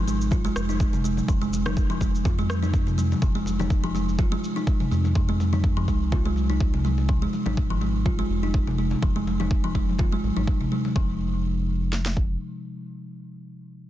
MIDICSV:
0, 0, Header, 1, 4, 480
1, 0, Start_track
1, 0, Key_signature, -4, "minor"
1, 0, Tempo, 483871
1, 1273, Time_signature, 4, 2, 24, 8
1, 13788, End_track
2, 0, Start_track
2, 0, Title_t, "Kalimba"
2, 0, Program_c, 0, 108
2, 75, Note_on_c, 0, 56, 76
2, 198, Note_off_c, 0, 56, 0
2, 316, Note_on_c, 0, 65, 82
2, 385, Note_off_c, 0, 65, 0
2, 443, Note_on_c, 0, 56, 104
2, 547, Note_off_c, 0, 56, 0
2, 685, Note_on_c, 0, 63, 76
2, 743, Note_off_c, 0, 63, 0
2, 924, Note_on_c, 0, 48, 75
2, 1022, Note_off_c, 0, 48, 0
2, 1034, Note_on_c, 0, 56, 75
2, 1157, Note_off_c, 0, 56, 0
2, 1275, Note_on_c, 0, 53, 82
2, 1344, Note_off_c, 0, 53, 0
2, 1404, Note_on_c, 0, 56, 94
2, 1507, Note_off_c, 0, 56, 0
2, 1643, Note_on_c, 0, 63, 74
2, 1702, Note_off_c, 0, 63, 0
2, 1884, Note_on_c, 0, 53, 102
2, 1982, Note_off_c, 0, 53, 0
2, 1995, Note_on_c, 0, 56, 74
2, 2118, Note_off_c, 0, 56, 0
2, 2237, Note_on_c, 0, 65, 78
2, 2305, Note_off_c, 0, 65, 0
2, 2368, Note_on_c, 0, 56, 101
2, 2469, Note_off_c, 0, 56, 0
2, 2605, Note_on_c, 0, 63, 72
2, 2663, Note_off_c, 0, 63, 0
2, 2845, Note_on_c, 0, 48, 76
2, 2943, Note_off_c, 0, 48, 0
2, 2955, Note_on_c, 0, 56, 74
2, 3078, Note_off_c, 0, 56, 0
2, 3196, Note_on_c, 0, 53, 82
2, 3265, Note_off_c, 0, 53, 0
2, 3325, Note_on_c, 0, 56, 96
2, 3428, Note_off_c, 0, 56, 0
2, 3566, Note_on_c, 0, 63, 74
2, 3624, Note_off_c, 0, 63, 0
2, 3806, Note_on_c, 0, 53, 101
2, 3903, Note_off_c, 0, 53, 0
2, 3915, Note_on_c, 0, 56, 72
2, 4038, Note_off_c, 0, 56, 0
2, 4155, Note_on_c, 0, 65, 77
2, 4224, Note_off_c, 0, 65, 0
2, 4284, Note_on_c, 0, 56, 106
2, 4387, Note_off_c, 0, 56, 0
2, 4525, Note_on_c, 0, 63, 76
2, 4583, Note_off_c, 0, 63, 0
2, 4765, Note_on_c, 0, 48, 75
2, 4862, Note_off_c, 0, 48, 0
2, 4875, Note_on_c, 0, 56, 74
2, 4998, Note_off_c, 0, 56, 0
2, 5116, Note_on_c, 0, 53, 78
2, 5185, Note_off_c, 0, 53, 0
2, 5245, Note_on_c, 0, 56, 97
2, 5348, Note_off_c, 0, 56, 0
2, 5484, Note_on_c, 0, 63, 74
2, 5542, Note_off_c, 0, 63, 0
2, 5723, Note_on_c, 0, 53, 102
2, 5821, Note_off_c, 0, 53, 0
2, 5832, Note_on_c, 0, 56, 77
2, 5956, Note_off_c, 0, 56, 0
2, 6072, Note_on_c, 0, 65, 80
2, 6143, Note_off_c, 0, 65, 0
2, 6205, Note_on_c, 0, 56, 100
2, 6308, Note_off_c, 0, 56, 0
2, 6444, Note_on_c, 0, 63, 74
2, 6502, Note_off_c, 0, 63, 0
2, 6684, Note_on_c, 0, 48, 74
2, 6782, Note_off_c, 0, 48, 0
2, 6793, Note_on_c, 0, 56, 74
2, 6917, Note_off_c, 0, 56, 0
2, 7030, Note_on_c, 0, 53, 82
2, 7102, Note_off_c, 0, 53, 0
2, 7163, Note_on_c, 0, 56, 93
2, 7267, Note_off_c, 0, 56, 0
2, 7403, Note_on_c, 0, 63, 72
2, 7462, Note_off_c, 0, 63, 0
2, 7642, Note_on_c, 0, 53, 96
2, 7741, Note_off_c, 0, 53, 0
2, 7753, Note_on_c, 0, 56, 70
2, 7877, Note_off_c, 0, 56, 0
2, 7993, Note_on_c, 0, 65, 78
2, 8063, Note_off_c, 0, 65, 0
2, 8122, Note_on_c, 0, 56, 102
2, 8227, Note_off_c, 0, 56, 0
2, 8364, Note_on_c, 0, 63, 71
2, 8422, Note_off_c, 0, 63, 0
2, 8605, Note_on_c, 0, 48, 74
2, 8702, Note_off_c, 0, 48, 0
2, 8714, Note_on_c, 0, 56, 72
2, 8837, Note_off_c, 0, 56, 0
2, 8955, Note_on_c, 0, 53, 80
2, 9024, Note_off_c, 0, 53, 0
2, 9085, Note_on_c, 0, 56, 97
2, 9188, Note_off_c, 0, 56, 0
2, 9324, Note_on_c, 0, 63, 73
2, 9382, Note_off_c, 0, 63, 0
2, 9562, Note_on_c, 0, 53, 99
2, 9661, Note_off_c, 0, 53, 0
2, 9674, Note_on_c, 0, 56, 74
2, 9797, Note_off_c, 0, 56, 0
2, 9913, Note_on_c, 0, 65, 77
2, 9983, Note_off_c, 0, 65, 0
2, 10043, Note_on_c, 0, 56, 99
2, 10147, Note_off_c, 0, 56, 0
2, 10282, Note_on_c, 0, 63, 71
2, 10342, Note_off_c, 0, 63, 0
2, 10522, Note_on_c, 0, 48, 74
2, 10621, Note_off_c, 0, 48, 0
2, 10632, Note_on_c, 0, 56, 72
2, 10757, Note_off_c, 0, 56, 0
2, 10870, Note_on_c, 0, 53, 86
2, 11095, Note_off_c, 0, 53, 0
2, 13788, End_track
3, 0, Start_track
3, 0, Title_t, "Analog synth bass"
3, 0, Program_c, 1, 38
3, 0, Note_on_c, 1, 32, 89
3, 485, Note_off_c, 1, 32, 0
3, 555, Note_on_c, 1, 29, 100
3, 1207, Note_off_c, 1, 29, 0
3, 1274, Note_on_c, 1, 29, 100
3, 2227, Note_off_c, 1, 29, 0
3, 2233, Note_on_c, 1, 41, 88
3, 3126, Note_off_c, 1, 41, 0
3, 3194, Note_on_c, 1, 29, 96
3, 4327, Note_off_c, 1, 29, 0
3, 4874, Note_on_c, 1, 41, 85
3, 5833, Note_on_c, 1, 36, 94
3, 5848, Note_off_c, 1, 41, 0
3, 7206, Note_off_c, 1, 36, 0
3, 7402, Note_on_c, 1, 32, 91
3, 8165, Note_off_c, 1, 32, 0
3, 8228, Note_on_c, 1, 29, 100
3, 8883, Note_off_c, 1, 29, 0
3, 8953, Note_on_c, 1, 29, 99
3, 10086, Note_off_c, 1, 29, 0
3, 10154, Note_on_c, 1, 32, 93
3, 10234, Note_off_c, 1, 32, 0
3, 10281, Note_on_c, 1, 32, 88
3, 10565, Note_off_c, 1, 32, 0
3, 10871, Note_on_c, 1, 29, 97
3, 12272, Note_off_c, 1, 29, 0
3, 13788, End_track
4, 0, Start_track
4, 0, Title_t, "Drums"
4, 75, Note_on_c, 9, 62, 45
4, 78, Note_on_c, 9, 69, 96
4, 174, Note_off_c, 9, 62, 0
4, 177, Note_off_c, 9, 69, 0
4, 210, Note_on_c, 9, 69, 41
4, 307, Note_on_c, 9, 63, 100
4, 310, Note_off_c, 9, 69, 0
4, 313, Note_on_c, 9, 36, 122
4, 320, Note_on_c, 9, 69, 52
4, 406, Note_off_c, 9, 63, 0
4, 413, Note_off_c, 9, 36, 0
4, 419, Note_off_c, 9, 69, 0
4, 448, Note_on_c, 9, 62, 39
4, 451, Note_on_c, 9, 69, 28
4, 548, Note_off_c, 9, 62, 0
4, 550, Note_off_c, 9, 69, 0
4, 555, Note_on_c, 9, 37, 81
4, 560, Note_on_c, 9, 69, 93
4, 654, Note_off_c, 9, 37, 0
4, 659, Note_off_c, 9, 69, 0
4, 689, Note_on_c, 9, 62, 52
4, 691, Note_on_c, 9, 69, 41
4, 788, Note_off_c, 9, 62, 0
4, 791, Note_off_c, 9, 69, 0
4, 794, Note_on_c, 9, 36, 125
4, 800, Note_on_c, 9, 69, 55
4, 893, Note_off_c, 9, 36, 0
4, 899, Note_off_c, 9, 69, 0
4, 923, Note_on_c, 9, 63, 72
4, 926, Note_on_c, 9, 62, 40
4, 929, Note_on_c, 9, 69, 26
4, 1023, Note_off_c, 9, 63, 0
4, 1025, Note_off_c, 9, 62, 0
4, 1029, Note_off_c, 9, 69, 0
4, 1041, Note_on_c, 9, 69, 98
4, 1140, Note_off_c, 9, 69, 0
4, 1163, Note_on_c, 9, 62, 51
4, 1164, Note_on_c, 9, 63, 61
4, 1170, Note_on_c, 9, 69, 40
4, 1262, Note_off_c, 9, 62, 0
4, 1264, Note_off_c, 9, 63, 0
4, 1269, Note_off_c, 9, 69, 0
4, 1274, Note_on_c, 9, 36, 121
4, 1281, Note_on_c, 9, 69, 54
4, 1373, Note_off_c, 9, 36, 0
4, 1380, Note_off_c, 9, 69, 0
4, 1411, Note_on_c, 9, 69, 28
4, 1510, Note_off_c, 9, 69, 0
4, 1519, Note_on_c, 9, 69, 96
4, 1521, Note_on_c, 9, 62, 46
4, 1619, Note_off_c, 9, 69, 0
4, 1620, Note_off_c, 9, 62, 0
4, 1644, Note_on_c, 9, 64, 88
4, 1647, Note_on_c, 9, 37, 81
4, 1650, Note_on_c, 9, 63, 100
4, 1651, Note_on_c, 9, 69, 40
4, 1743, Note_off_c, 9, 64, 0
4, 1746, Note_off_c, 9, 37, 0
4, 1749, Note_off_c, 9, 63, 0
4, 1751, Note_off_c, 9, 69, 0
4, 1754, Note_on_c, 9, 36, 122
4, 1761, Note_on_c, 9, 69, 50
4, 1763, Note_on_c, 9, 62, 36
4, 1853, Note_off_c, 9, 36, 0
4, 1860, Note_off_c, 9, 69, 0
4, 1863, Note_off_c, 9, 62, 0
4, 1891, Note_on_c, 9, 69, 25
4, 1990, Note_off_c, 9, 69, 0
4, 1990, Note_on_c, 9, 62, 52
4, 1993, Note_on_c, 9, 36, 63
4, 2001, Note_on_c, 9, 69, 86
4, 2089, Note_off_c, 9, 62, 0
4, 2093, Note_off_c, 9, 36, 0
4, 2100, Note_off_c, 9, 69, 0
4, 2133, Note_on_c, 9, 69, 41
4, 2233, Note_off_c, 9, 69, 0
4, 2234, Note_on_c, 9, 36, 122
4, 2236, Note_on_c, 9, 64, 109
4, 2243, Note_on_c, 9, 69, 53
4, 2333, Note_off_c, 9, 36, 0
4, 2335, Note_off_c, 9, 64, 0
4, 2342, Note_off_c, 9, 69, 0
4, 2363, Note_on_c, 9, 62, 35
4, 2375, Note_on_c, 9, 69, 27
4, 2462, Note_off_c, 9, 62, 0
4, 2471, Note_on_c, 9, 63, 63
4, 2474, Note_off_c, 9, 69, 0
4, 2478, Note_on_c, 9, 37, 79
4, 2482, Note_on_c, 9, 69, 93
4, 2571, Note_off_c, 9, 63, 0
4, 2577, Note_off_c, 9, 37, 0
4, 2582, Note_off_c, 9, 69, 0
4, 2603, Note_on_c, 9, 63, 97
4, 2613, Note_on_c, 9, 62, 45
4, 2613, Note_on_c, 9, 69, 41
4, 2702, Note_off_c, 9, 63, 0
4, 2712, Note_off_c, 9, 69, 0
4, 2713, Note_off_c, 9, 62, 0
4, 2714, Note_on_c, 9, 36, 118
4, 2722, Note_on_c, 9, 69, 53
4, 2813, Note_off_c, 9, 36, 0
4, 2822, Note_off_c, 9, 69, 0
4, 2845, Note_on_c, 9, 62, 36
4, 2852, Note_on_c, 9, 69, 26
4, 2944, Note_off_c, 9, 62, 0
4, 2951, Note_off_c, 9, 69, 0
4, 2956, Note_on_c, 9, 63, 58
4, 2961, Note_on_c, 9, 69, 94
4, 3055, Note_off_c, 9, 63, 0
4, 3060, Note_off_c, 9, 69, 0
4, 3094, Note_on_c, 9, 69, 39
4, 3096, Note_on_c, 9, 62, 51
4, 3096, Note_on_c, 9, 63, 62
4, 3193, Note_off_c, 9, 69, 0
4, 3194, Note_on_c, 9, 36, 119
4, 3195, Note_off_c, 9, 62, 0
4, 3195, Note_off_c, 9, 63, 0
4, 3201, Note_on_c, 9, 69, 52
4, 3293, Note_off_c, 9, 36, 0
4, 3300, Note_off_c, 9, 69, 0
4, 3334, Note_on_c, 9, 69, 26
4, 3431, Note_on_c, 9, 62, 52
4, 3433, Note_off_c, 9, 69, 0
4, 3443, Note_on_c, 9, 69, 90
4, 3530, Note_off_c, 9, 62, 0
4, 3542, Note_off_c, 9, 69, 0
4, 3569, Note_on_c, 9, 64, 90
4, 3571, Note_on_c, 9, 63, 105
4, 3576, Note_on_c, 9, 69, 39
4, 3668, Note_off_c, 9, 64, 0
4, 3670, Note_off_c, 9, 63, 0
4, 3673, Note_on_c, 9, 36, 116
4, 3675, Note_off_c, 9, 69, 0
4, 3681, Note_on_c, 9, 62, 36
4, 3684, Note_on_c, 9, 69, 48
4, 3772, Note_off_c, 9, 36, 0
4, 3781, Note_off_c, 9, 62, 0
4, 3783, Note_off_c, 9, 69, 0
4, 3814, Note_on_c, 9, 69, 25
4, 3913, Note_off_c, 9, 69, 0
4, 3922, Note_on_c, 9, 69, 89
4, 3923, Note_on_c, 9, 62, 47
4, 4022, Note_off_c, 9, 69, 0
4, 4023, Note_off_c, 9, 62, 0
4, 4053, Note_on_c, 9, 69, 38
4, 4152, Note_off_c, 9, 69, 0
4, 4153, Note_on_c, 9, 36, 115
4, 4163, Note_on_c, 9, 63, 97
4, 4164, Note_on_c, 9, 69, 50
4, 4252, Note_off_c, 9, 36, 0
4, 4262, Note_off_c, 9, 63, 0
4, 4263, Note_off_c, 9, 69, 0
4, 4289, Note_on_c, 9, 62, 38
4, 4295, Note_on_c, 9, 69, 27
4, 4388, Note_off_c, 9, 62, 0
4, 4395, Note_off_c, 9, 69, 0
4, 4402, Note_on_c, 9, 69, 91
4, 4502, Note_off_c, 9, 69, 0
4, 4534, Note_on_c, 9, 62, 49
4, 4534, Note_on_c, 9, 69, 37
4, 4633, Note_off_c, 9, 62, 0
4, 4633, Note_off_c, 9, 69, 0
4, 4633, Note_on_c, 9, 36, 119
4, 4642, Note_on_c, 9, 69, 53
4, 4733, Note_off_c, 9, 36, 0
4, 4741, Note_off_c, 9, 69, 0
4, 4766, Note_on_c, 9, 63, 71
4, 4772, Note_on_c, 9, 62, 34
4, 4773, Note_on_c, 9, 69, 25
4, 4865, Note_off_c, 9, 63, 0
4, 4871, Note_off_c, 9, 62, 0
4, 4872, Note_off_c, 9, 69, 0
4, 4881, Note_on_c, 9, 69, 88
4, 4980, Note_off_c, 9, 69, 0
4, 5001, Note_on_c, 9, 63, 63
4, 5008, Note_on_c, 9, 62, 48
4, 5012, Note_on_c, 9, 69, 38
4, 5100, Note_off_c, 9, 63, 0
4, 5108, Note_off_c, 9, 62, 0
4, 5111, Note_off_c, 9, 69, 0
4, 5113, Note_on_c, 9, 36, 111
4, 5121, Note_on_c, 9, 69, 49
4, 5212, Note_off_c, 9, 36, 0
4, 5220, Note_off_c, 9, 69, 0
4, 5252, Note_on_c, 9, 69, 24
4, 5351, Note_off_c, 9, 69, 0
4, 5357, Note_on_c, 9, 62, 55
4, 5360, Note_on_c, 9, 69, 84
4, 5456, Note_off_c, 9, 62, 0
4, 5459, Note_off_c, 9, 69, 0
4, 5482, Note_on_c, 9, 64, 84
4, 5484, Note_on_c, 9, 63, 92
4, 5490, Note_on_c, 9, 69, 36
4, 5581, Note_off_c, 9, 64, 0
4, 5583, Note_off_c, 9, 63, 0
4, 5589, Note_off_c, 9, 69, 0
4, 5593, Note_on_c, 9, 36, 116
4, 5600, Note_on_c, 9, 62, 39
4, 5600, Note_on_c, 9, 69, 47
4, 5692, Note_off_c, 9, 36, 0
4, 5699, Note_off_c, 9, 62, 0
4, 5699, Note_off_c, 9, 69, 0
4, 5730, Note_on_c, 9, 69, 25
4, 5829, Note_off_c, 9, 69, 0
4, 5833, Note_on_c, 9, 36, 56
4, 5836, Note_on_c, 9, 62, 45
4, 5838, Note_on_c, 9, 69, 85
4, 5932, Note_off_c, 9, 36, 0
4, 5935, Note_off_c, 9, 62, 0
4, 5937, Note_off_c, 9, 69, 0
4, 5969, Note_on_c, 9, 69, 38
4, 6068, Note_off_c, 9, 69, 0
4, 6073, Note_on_c, 9, 36, 111
4, 6074, Note_on_c, 9, 64, 98
4, 6172, Note_off_c, 9, 36, 0
4, 6173, Note_off_c, 9, 64, 0
4, 6206, Note_on_c, 9, 62, 36
4, 6209, Note_on_c, 9, 69, 25
4, 6305, Note_off_c, 9, 62, 0
4, 6309, Note_off_c, 9, 69, 0
4, 6309, Note_on_c, 9, 63, 62
4, 6319, Note_on_c, 9, 69, 82
4, 6408, Note_off_c, 9, 63, 0
4, 6418, Note_off_c, 9, 69, 0
4, 6444, Note_on_c, 9, 63, 86
4, 6445, Note_on_c, 9, 62, 52
4, 6449, Note_on_c, 9, 69, 37
4, 6543, Note_off_c, 9, 63, 0
4, 6544, Note_off_c, 9, 62, 0
4, 6548, Note_off_c, 9, 69, 0
4, 6552, Note_on_c, 9, 36, 115
4, 6561, Note_on_c, 9, 69, 48
4, 6651, Note_off_c, 9, 36, 0
4, 6660, Note_off_c, 9, 69, 0
4, 6682, Note_on_c, 9, 62, 38
4, 6692, Note_on_c, 9, 69, 24
4, 6781, Note_off_c, 9, 62, 0
4, 6790, Note_on_c, 9, 63, 62
4, 6791, Note_off_c, 9, 69, 0
4, 6798, Note_on_c, 9, 69, 85
4, 6889, Note_off_c, 9, 63, 0
4, 6898, Note_off_c, 9, 69, 0
4, 6923, Note_on_c, 9, 62, 48
4, 6930, Note_on_c, 9, 69, 35
4, 7023, Note_off_c, 9, 62, 0
4, 7029, Note_off_c, 9, 69, 0
4, 7032, Note_on_c, 9, 36, 108
4, 7131, Note_off_c, 9, 36, 0
4, 7171, Note_on_c, 9, 69, 25
4, 7270, Note_off_c, 9, 69, 0
4, 7273, Note_on_c, 9, 62, 48
4, 7279, Note_on_c, 9, 69, 86
4, 7372, Note_off_c, 9, 62, 0
4, 7378, Note_off_c, 9, 69, 0
4, 7398, Note_on_c, 9, 63, 102
4, 7401, Note_on_c, 9, 64, 96
4, 7410, Note_on_c, 9, 69, 36
4, 7497, Note_off_c, 9, 63, 0
4, 7500, Note_off_c, 9, 64, 0
4, 7509, Note_off_c, 9, 69, 0
4, 7511, Note_on_c, 9, 62, 40
4, 7512, Note_on_c, 9, 36, 104
4, 7518, Note_on_c, 9, 69, 45
4, 7610, Note_off_c, 9, 62, 0
4, 7612, Note_off_c, 9, 36, 0
4, 7617, Note_off_c, 9, 69, 0
4, 7650, Note_on_c, 9, 69, 23
4, 7748, Note_on_c, 9, 62, 49
4, 7749, Note_off_c, 9, 69, 0
4, 7760, Note_on_c, 9, 69, 82
4, 7848, Note_off_c, 9, 62, 0
4, 7859, Note_off_c, 9, 69, 0
4, 7890, Note_on_c, 9, 69, 38
4, 7990, Note_off_c, 9, 69, 0
4, 7991, Note_on_c, 9, 63, 88
4, 7993, Note_on_c, 9, 36, 105
4, 8090, Note_off_c, 9, 63, 0
4, 8092, Note_off_c, 9, 36, 0
4, 8121, Note_on_c, 9, 62, 37
4, 8220, Note_off_c, 9, 62, 0
4, 8239, Note_on_c, 9, 69, 79
4, 8338, Note_off_c, 9, 69, 0
4, 8369, Note_on_c, 9, 62, 47
4, 8371, Note_on_c, 9, 69, 36
4, 8468, Note_off_c, 9, 62, 0
4, 8470, Note_off_c, 9, 69, 0
4, 8472, Note_on_c, 9, 36, 104
4, 8571, Note_off_c, 9, 36, 0
4, 8605, Note_on_c, 9, 62, 42
4, 8607, Note_on_c, 9, 63, 59
4, 8704, Note_off_c, 9, 62, 0
4, 8706, Note_off_c, 9, 63, 0
4, 8720, Note_on_c, 9, 69, 83
4, 8819, Note_off_c, 9, 69, 0
4, 8836, Note_on_c, 9, 63, 62
4, 8840, Note_on_c, 9, 62, 55
4, 8850, Note_on_c, 9, 69, 35
4, 8935, Note_off_c, 9, 63, 0
4, 8939, Note_off_c, 9, 62, 0
4, 8949, Note_off_c, 9, 69, 0
4, 8952, Note_on_c, 9, 36, 113
4, 9052, Note_off_c, 9, 36, 0
4, 9090, Note_on_c, 9, 69, 24
4, 9190, Note_off_c, 9, 69, 0
4, 9197, Note_on_c, 9, 69, 84
4, 9200, Note_on_c, 9, 62, 53
4, 9296, Note_off_c, 9, 69, 0
4, 9299, Note_off_c, 9, 62, 0
4, 9329, Note_on_c, 9, 63, 96
4, 9333, Note_on_c, 9, 64, 84
4, 9428, Note_off_c, 9, 63, 0
4, 9432, Note_off_c, 9, 64, 0
4, 9432, Note_on_c, 9, 36, 111
4, 9433, Note_on_c, 9, 62, 34
4, 9531, Note_off_c, 9, 36, 0
4, 9533, Note_off_c, 9, 62, 0
4, 9672, Note_on_c, 9, 36, 55
4, 9676, Note_on_c, 9, 62, 48
4, 9771, Note_off_c, 9, 36, 0
4, 9776, Note_off_c, 9, 62, 0
4, 9811, Note_on_c, 9, 69, 37
4, 9814, Note_on_c, 9, 63, 62
4, 9906, Note_on_c, 9, 64, 104
4, 9910, Note_off_c, 9, 69, 0
4, 9912, Note_on_c, 9, 36, 109
4, 9913, Note_off_c, 9, 63, 0
4, 10005, Note_off_c, 9, 64, 0
4, 10012, Note_off_c, 9, 36, 0
4, 10036, Note_on_c, 9, 62, 39
4, 10136, Note_off_c, 9, 62, 0
4, 10158, Note_on_c, 9, 63, 57
4, 10160, Note_on_c, 9, 69, 83
4, 10257, Note_off_c, 9, 63, 0
4, 10259, Note_off_c, 9, 69, 0
4, 10281, Note_on_c, 9, 62, 49
4, 10285, Note_on_c, 9, 63, 87
4, 10380, Note_off_c, 9, 62, 0
4, 10385, Note_off_c, 9, 63, 0
4, 10391, Note_on_c, 9, 36, 105
4, 10490, Note_off_c, 9, 36, 0
4, 10526, Note_on_c, 9, 62, 37
4, 10626, Note_off_c, 9, 62, 0
4, 10638, Note_on_c, 9, 63, 59
4, 10638, Note_on_c, 9, 69, 83
4, 10737, Note_off_c, 9, 63, 0
4, 10737, Note_off_c, 9, 69, 0
4, 10761, Note_on_c, 9, 63, 57
4, 10762, Note_on_c, 9, 62, 56
4, 10860, Note_off_c, 9, 63, 0
4, 10861, Note_off_c, 9, 62, 0
4, 10870, Note_on_c, 9, 36, 109
4, 10969, Note_off_c, 9, 36, 0
4, 11832, Note_on_c, 9, 38, 56
4, 11931, Note_off_c, 9, 38, 0
4, 11960, Note_on_c, 9, 38, 74
4, 12059, Note_off_c, 9, 38, 0
4, 12070, Note_on_c, 9, 36, 87
4, 12169, Note_off_c, 9, 36, 0
4, 13788, End_track
0, 0, End_of_file